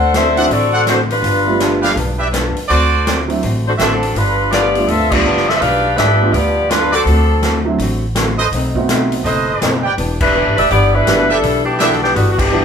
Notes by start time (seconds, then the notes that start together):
Already playing: D2 D4 A4 C5 F#5
0.14 D3 A3 C4 D4 F#4 A4 C5 E5, snare, closed hi-hat
0.36 E3 A3 C4 D4 F#4 A4 C5 D5 F#5, open hi-hat
0.50 A1 D3 A3 C4 F#4 A4 D5, open hi-hat
0.73 A4 C5 D5 F#5
0.87 D3 A3 C4 D4 F#4 C5, snare, closed hi-hat
1.10 G3 D4 F4 B4, open hi-hat
1.22 G1 G2 F3 B3 D4, open hi-hat
1.46 G3 A3 B3 D4 F4
1.60 G2 F3 B3 D4, snare, closed hi-hat
1.82 G4 B4 D5 F5, snare, open hi-hat
1.96 B1 G2 F3 B3 D4, open hi-hat
2.18 G4 B4 D5 E5
2.32 G2 F3 B3 D4, snare, closed hi-hat
2.56 muted upright bass stroke, open hi-hat
2.68 D2 D3 A3 C4 F#4 A4 C5 D5, open hi-hat
3.06 D3 A3 C4 F#4, snare, closed hi-hat
3.28 F#3 A3 C4 D4 E4, open hi-hat
3.42 A1 D3 A3 C4 F#4, open hi-hat
3.67 A3 D4 F#4 C5
3.78 A1 D3 F#3 A3 C4 D4 F#4 A4 C5 E5, snare, closed hi-hat
4.03 open hi-hat
4.15 G1 G2 F3 G3 B3 D4 F4 B4, open hi-hat
4.51 G2 F3 B3 F4 G4 B4 D5, snare, closed hi-hat
4.55 D4
4.75 G3 A3 B3 D4 F4, open hi-hat
4.88 D2 G2 F3 B3 C4 F4 A4 E5, open hi-hat
4.92 D4
5.11 G3 A3 B3 D4 F4 G4 D5, kick, crash
5.24 F#1 G2 F3 B3 D4
5.37 snare
5.48 C4 F4 A4 E5, snare
5.57 G4 E5
5.61 B1 G2 F3 B3 D4 B4 F5, open hi-hat
5.96 G#1 G2 F3 B3 D4 G4 B4 E5, snare, closed hi-hat
6.21 G3 A3 B3 D4 F4
6.33 D2 G2 F3 B3 D4 F4 G4 D5, open hi-hat
6.69 G2 F3 G3 B3 D4 F4 B4, snare, closed hi-hat
6.92 F#3 C4 D4 F#4 A4 C5 D5, open hi-hat
7.06 D2 D3 A3 C4 F#4, open hi-hat
7.42 D3 A3 C4 F#4, snare, closed hi-hat
7.65 F#3 A3 C4 D4 E4
7.78 A1 D3 A3 C4, open hi-hat
7.83 F#4
8.15 D3 A3 C4 F#4, snare, closed hi-hat
8.38 A4 B4 C5 D#5, open hi-hat
8.52 B1 B2 A3 C4 D#4, open hi-hat
8.75 A3 B3 C4 D#4 F#4, kick
8.89 B2 A3 C4 D#4, snare, closed hi-hat
9.12 open hi-hat
9.24 F#1 B2 A3 C4 A4 B4 C5 D#5, open hi-hat
9.28 D#4
9.61 F#1 B2 A3 C4 D#4, snare, closed hi-hat
9.83 G4 B4 D5 G5
9.97 E1 E3 B3 D4 G4, open hi-hat
10.21 G3 D4 E4 B4, kick, crash
10.35 E3 B3 D4 G4
10.47 G1
10.57 F1 D4 G4 B4 E5, open hi-hat
10.70 G1 E3 B3 D4 E4 G4 D5, open hi-hat
10.95 G3 D4 E4 B4
11.07 F#1 E3 G3 B3 D4 E4 F#4 G4, snare, closed hi-hat
11.29 G3 D4 E4 G4 A4 B4 D5 E5
11.42 B1 E3 B3 D4 G4, open hi-hat
11.65 E3 B3 D4 G4
11.79 E3 F#3 B3 D4 G4 A4 B4 D5 E5, snare, closed hi-hat
11.92 snare
12.02 E3 B3 D4 G4, snare
12.16 G1 D3 E3 G3 B3 D4 F#4 G4, open hi-hat
12.32 F#4
12.38 E3 B3 D4 G4, kick, crash
12.51 E3 G3 B3 D4 E4 F#4 G4